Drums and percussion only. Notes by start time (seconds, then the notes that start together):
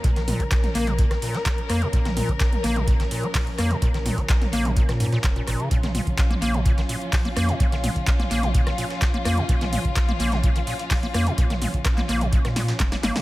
0.04 kick, closed hi-hat
0.16 snare, closed hi-hat
0.28 closed hi-hat, mid tom, open hi-hat
0.40 kick, closed hi-hat
0.51 kick, snare, clap, closed hi-hat
0.64 snare, closed hi-hat, mid tom
0.75 snare, closed hi-hat, open hi-hat
0.87 closed hi-hat, mid tom
0.99 kick, closed hi-hat
1.11 cross-stick, snare, closed hi-hat
1.22 closed hi-hat, open hi-hat
1.34 snare, closed hi-hat
1.46 kick, snare, clap, closed hi-hat
1.58 closed hi-hat
1.69 cross-stick, closed hi-hat, open hi-hat
1.82 closed hi-hat
1.93 kick, closed hi-hat
2.05 snare, closed hi-hat, mid tom
2.17 closed hi-hat, mid tom, open hi-hat
2.29 kick, closed hi-hat
2.40 kick, snare, clap, closed hi-hat
2.53 closed hi-hat, mid tom
2.64 closed hi-hat, open hi-hat
2.76 closed hi-hat, mid tom
2.88 kick, closed hi-hat
3.00 snare, closed hi-hat
3.11 closed hi-hat, open hi-hat
3.23 closed hi-hat
3.35 kick, snare, clap, closed hi-hat, open hi-hat
3.47 closed hi-hat
3.58 cross-stick, closed hi-hat, open hi-hat
3.71 closed hi-hat
3.82 kick, closed hi-hat
3.94 snare, closed hi-hat
4.06 closed hi-hat, mid tom, open hi-hat
4.18 kick, closed hi-hat
4.29 kick, snare, clap, closed hi-hat
4.42 snare, closed hi-hat, mid tom
4.53 snare, closed hi-hat, open hi-hat
4.65 closed hi-hat, mid tom
4.76 kick, closed hi-hat
4.89 cross-stick, snare, closed hi-hat
5.00 closed hi-hat, open hi-hat
5.12 snare, closed hi-hat
5.24 kick, snare, clap, closed hi-hat
5.36 closed hi-hat
5.47 cross-stick, closed hi-hat, open hi-hat
5.60 closed hi-hat
5.71 kick, closed hi-hat
5.83 snare, closed hi-hat, mid tom
5.95 closed hi-hat, mid tom, open hi-hat
6.07 kick, closed hi-hat
6.18 kick, snare, clap, closed hi-hat
6.31 closed hi-hat, mid tom
6.42 closed hi-hat, open hi-hat
6.54 closed hi-hat, mid tom
6.66 kick, closed hi-hat
6.78 snare, closed hi-hat
6.89 closed hi-hat, open hi-hat
7.02 closed hi-hat
7.13 kick, snare, clap, closed hi-hat, open hi-hat
7.25 closed hi-hat
7.36 cross-stick, closed hi-hat, open hi-hat
7.49 closed hi-hat
7.60 kick, closed hi-hat
7.72 snare, closed hi-hat
7.84 closed hi-hat, mid tom, open hi-hat
7.96 kick, closed hi-hat
8.07 kick, snare, clap, closed hi-hat
8.20 snare, closed hi-hat, mid tom
8.31 snare, closed hi-hat, open hi-hat
8.43 closed hi-hat, mid tom
8.54 kick, closed hi-hat
8.67 cross-stick, snare, closed hi-hat
8.78 closed hi-hat, open hi-hat
8.90 snare, closed hi-hat
9.02 kick, snare, clap, closed hi-hat
9.14 closed hi-hat
9.25 cross-stick, closed hi-hat, open hi-hat
9.38 closed hi-hat
9.49 kick, closed hi-hat
9.61 snare, closed hi-hat, mid tom
9.73 closed hi-hat, mid tom, open hi-hat
9.85 kick, closed hi-hat
9.96 kick, snare, clap, closed hi-hat
10.09 closed hi-hat, mid tom
10.20 closed hi-hat, open hi-hat
10.32 snare, closed hi-hat, mid tom
10.43 kick, closed hi-hat
10.56 closed hi-hat
10.67 snare, open hi-hat
10.79 closed hi-hat
10.91 kick, snare, clap, closed hi-hat, open hi-hat
11.03 closed hi-hat
11.14 cross-stick, closed hi-hat, open hi-hat
11.27 closed hi-hat
11.38 kick, closed hi-hat
11.50 snare, closed hi-hat, mid tom
11.62 closed hi-hat, mid tom, open hi-hat
11.74 kick, closed hi-hat
11.85 kick, cross-stick, snare, clap, closed hi-hat
11.97 snare, clap, closed hi-hat, mid tom
12.09 snare, closed hi-hat, open hi-hat
12.21 closed hi-hat, mid tom
12.32 kick, closed hi-hat
12.45 cross-stick, snare, closed hi-hat
12.56 snare, closed hi-hat, open hi-hat
12.68 snare, closed hi-hat
12.80 kick, snare, clap, closed hi-hat
12.92 snare, closed hi-hat
13.03 snare, closed hi-hat, open hi-hat
13.16 snare, closed hi-hat, open hi-hat